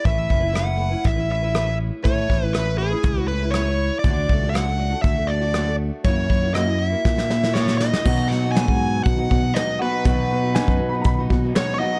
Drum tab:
CC |----------------|----------------|----------------|----------------|
HH |x---x---x---x---|x---x---x---x---|x---x---x---x---|x---x-----------|
SD |----r-------r---|----r-------r---|----r-------r---|----r---oooooooo|
BD |o-o-----o-------|o-o-----o-------|o-o-----o-------|o-o-----o-------|

CC |x---------------|----------------|
HH |----x---x---x---|x---x---x---x---|
SD |--o-o-------o---|----o-------o---|
BD |o----o--o-o-----|o----o--o-o-----|